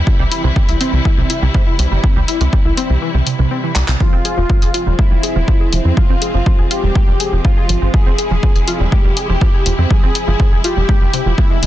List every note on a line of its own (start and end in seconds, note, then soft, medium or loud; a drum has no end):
0.00 3.96 C3 medium
0.00 3.96 E3 medium
0.00 3.96 G3 medium
0.00 3.96 E4 medium
0.07 0.18 C3 medium
0.07 kick loud
0.19 0.27 C2 medium
0.19 0.24 G3 loud
0.31 0.43 E4 medium
0.31 open hi-hat loud
0.44 0.52 C2 medium
0.44 0.48 C3 loud
0.56 0.63 C3 medium
0.56 kick loud
0.69 0.76 C2 medium
0.69 0.76 E4 medium
0.69 open hi-hat medium
0.81 0.92 C4 medium
0.81 open hi-hat loud
0.93 1.01 C2 medium
0.93 1.00 C3 medium
1.05 1.13 E3 medium
1.05 kick loud
1.18 1.25 C2 medium
1.18 1.22 C3 medium
1.30 1.41 E4 medium
1.30 open hi-hat medium
1.42 1.50 C2 medium
1.42 1.47 C3 loud
1.54 1.62 C3 loud
1.54 kick loud
1.67 1.74 E4 medium
1.79 1.87 C2 medium
1.79 1.86 C3 medium
1.79 open hi-hat loud
1.92 1.99 G1 medium
1.92 2.02 G3 medium
2.04 2.15 C3 medium
2.04 kick loud
2.16 2.24 C#2 medium
2.16 2.20 G3 loud
2.28 2.39 E4 medium
2.28 open hi-hat loud
2.41 2.48 C#2 medium
2.41 2.45 C3 loud
2.41 open hi-hat medium
2.53 2.60 C3 medium
2.53 kick loud
2.65 2.73 C2 medium
2.65 2.72 E4 medium
2.77 2.88 C4 loud
2.77 open hi-hat loud
2.90 2.98 C2 medium
2.90 2.97 C3 medium
3.02 3.09 E3 medium
3.14 3.22 C2 medium
3.14 3.19 C3 medium
3.27 3.34 C3 medium
3.27 open hi-hat loud
3.39 3.47 C2 medium
3.39 3.50 C3 loud
3.51 3.59 C4 medium
3.64 3.71 E3 medium
3.76 3.84 C2 medium
3.76 3.83 G3 medium
3.76 clap medium
3.76 open hi-hat loud
3.88 3.96 C2 medium
3.88 3.95 C3 medium
3.88 clap medium
4.00 11.66 C3 medium
4.00 4.11 F3 medium
4.00 11.66 F3 medium
4.00 11.66 G#3 medium
4.00 7.90 C4 medium
4.00 4.89 F4 loud
4.00 kick loud
4.13 4.20 F1 medium
4.13 4.17 C4 loud
4.25 4.36 G#4 medium
4.25 open hi-hat loud
4.37 4.45 F1 medium
4.37 4.42 F3 loud
4.50 4.57 F3 medium
4.50 kick loud
4.62 4.70 F1 medium
4.62 4.69 G#4 medium
4.62 open hi-hat medium
4.74 4.85 F4 loud
4.74 open hi-hat loud
4.87 4.94 F1 medium
4.87 4.94 G3 medium
4.99 5.06 G#3 medium
4.99 5.87 E4 loud
4.99 kick loud
5.11 5.19 F1 medium
5.11 5.16 G3 medium
5.23 5.34 G#4 medium
5.23 open hi-hat loud
5.36 5.43 F1 medium
5.36 5.40 F3 loud
5.48 5.55 F3 loud
5.48 kick loud
5.61 5.68 G#4 medium
5.72 5.80 F1 medium
5.72 5.80 F3 medium
5.72 open hi-hat loud
5.85 5.93 F2 medium
5.85 5.96 C4 medium
5.97 6.08 F3 medium
5.97 6.61 F4 loud
5.97 kick loud
6.10 6.17 G1 medium
6.10 6.14 C4 loud
6.22 6.33 G#4 medium
6.22 open hi-hat loud
6.34 6.42 G1 medium
6.34 6.38 F3 loud
6.46 6.54 F3 medium
6.46 kick loud
6.59 6.66 F1 medium
6.59 6.66 G#4 medium
6.71 6.82 F4 loud
6.71 7.35 G4 loud
6.71 open hi-hat loud
6.83 6.91 F1 medium
6.83 6.91 G3 medium
6.95 7.03 G#3 medium
6.95 kick loud
7.08 7.16 F1 medium
7.08 7.12 G3 medium
7.20 7.31 G#4 medium
7.20 open hi-hat loud
7.33 7.40 F1 medium
7.33 7.37 F3 loud
7.45 7.52 F3 loud
7.45 7.90 F4 medium
7.45 kick loud
7.57 7.64 G#4 medium
7.69 7.77 G#1 medium
7.69 7.77 F3 medium
7.69 open hi-hat loud
7.82 7.89 G#1 medium
7.82 7.92 C4 medium
7.94 8.05 F3 medium
7.94 11.66 E4 medium
7.94 8.83 G#4 loud
7.94 kick loud
8.06 8.14 F1 medium
8.06 8.11 C4 loud
8.18 8.30 G#4 medium
8.18 open hi-hat loud
8.31 8.38 F1 medium
8.31 8.35 F3 medium
8.43 8.50 F3 medium
8.43 kick loud
8.55 8.63 F1 medium
8.55 8.63 G#4 medium
8.55 open hi-hat medium
8.68 8.79 F4 loud
8.68 open hi-hat loud
8.80 8.88 F1 medium
8.80 8.87 G3 medium
8.92 9.00 G#3 medium
8.92 9.81 G4 loud
8.92 kick loud
9.05 9.12 F1 medium
9.05 9.09 G3 medium
9.17 9.28 G#4 medium
9.17 open hi-hat loud
9.29 9.37 F1 medium
9.29 9.34 F3 loud
9.41 9.49 F3 loud
9.41 kick loud
9.54 9.61 G#4 medium
9.66 9.74 F1 medium
9.66 9.73 F3 medium
9.66 open hi-hat loud
9.78 9.86 F2 medium
9.78 9.89 C4 medium
9.90 10.02 F3 medium
9.90 10.55 G#4 loud
9.90 kick loud
10.03 10.11 G1 medium
10.03 10.07 C4 loud
10.15 10.26 G#4 medium
10.15 open hi-hat loud
10.28 10.35 G1 medium
10.28 10.32 F3 loud
10.40 10.47 F3 medium
10.40 kick loud
10.52 10.60 F1 medium
10.52 10.59 G#4 medium
10.64 10.75 F4 loud
10.64 11.28 G4 loud
10.64 open hi-hat loud
10.77 10.84 F1 medium
10.77 10.84 G3 medium
10.89 10.96 G#3 medium
10.89 kick loud
11.01 11.09 F1 medium
11.01 11.06 G3 medium
11.14 11.21 C3 loud
11.14 open hi-hat loud
11.26 11.34 F1 medium
11.26 11.33 F3 medium
11.38 11.46 G#3 medium
11.38 11.66 E4 medium
11.38 kick loud
11.51 11.58 G#3 medium
11.63 11.66 F1 medium
11.63 11.66 G#3 medium
11.63 open hi-hat loud